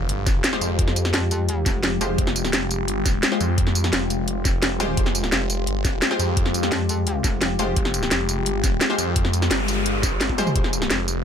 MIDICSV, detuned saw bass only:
0, 0, Header, 1, 2, 480
1, 0, Start_track
1, 0, Key_signature, -4, "minor"
1, 0, Tempo, 348837
1, 1086, Time_signature, 4, 2, 24, 8
1, 15466, End_track
2, 0, Start_track
2, 0, Title_t, "Detuned saw bass"
2, 0, Program_c, 0, 39
2, 124, Note_on_c, 0, 31, 99
2, 586, Note_off_c, 0, 31, 0
2, 846, Note_on_c, 0, 41, 91
2, 1546, Note_off_c, 0, 41, 0
2, 3006, Note_on_c, 0, 29, 96
2, 3466, Note_off_c, 0, 29, 0
2, 3486, Note_on_c, 0, 29, 97
2, 3946, Note_off_c, 0, 29, 0
2, 3965, Note_on_c, 0, 31, 97
2, 4426, Note_off_c, 0, 31, 0
2, 4686, Note_on_c, 0, 41, 92
2, 5386, Note_off_c, 0, 41, 0
2, 5406, Note_on_c, 0, 29, 97
2, 6587, Note_off_c, 0, 29, 0
2, 6845, Note_on_c, 0, 29, 99
2, 7306, Note_off_c, 0, 29, 0
2, 7324, Note_on_c, 0, 29, 96
2, 7786, Note_off_c, 0, 29, 0
2, 7803, Note_on_c, 0, 31, 101
2, 8265, Note_off_c, 0, 31, 0
2, 8523, Note_on_c, 0, 41, 96
2, 9225, Note_off_c, 0, 41, 0
2, 10685, Note_on_c, 0, 29, 98
2, 11146, Note_off_c, 0, 29, 0
2, 11164, Note_on_c, 0, 29, 96
2, 11625, Note_off_c, 0, 29, 0
2, 11644, Note_on_c, 0, 31, 99
2, 12105, Note_off_c, 0, 31, 0
2, 12365, Note_on_c, 0, 41, 94
2, 13066, Note_off_c, 0, 41, 0
2, 13085, Note_on_c, 0, 31, 99
2, 14266, Note_off_c, 0, 31, 0
2, 14525, Note_on_c, 0, 29, 98
2, 14986, Note_off_c, 0, 29, 0
2, 15006, Note_on_c, 0, 29, 97
2, 15466, Note_off_c, 0, 29, 0
2, 15466, End_track
0, 0, End_of_file